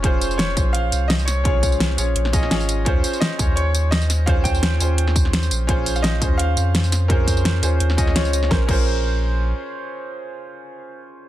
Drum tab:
CC |----------------|----------------|----------------|----------------|
HH |x-x-x-x-x-x-x-x-|x-x-x-x-x-x-x-x-|x-x-x-x-x-x-x-x-|x-x-x-x-x-x-x-x-|
TB |--xx--x---x--xx-|--xx--x---x--xx-|--xx--x---x--xx-|--xx--x---x--xx-|
SD |----o-------o-o-|----o----o-oo---|----o-------o-o-|----o----o-oo---|
BD |o-----o---------|o-o-------o-----|o-----o---------|o-o-------o-----|

CC |----------------|----------------|--x-------------|----------------|
HH |x-x-x-x-x-x-x-x-|x-x-x-x-x-x-x-x-|----------------|----------------|
TB |--xx--x---x--xx-|--xx--x---x--xx-|----------------|----------------|
SD |----o-------o-o-|----o----o-oo--o|o---------------|----------------|
BD |o-----o---------|o-o-------o-----|o-o-------------|----------------|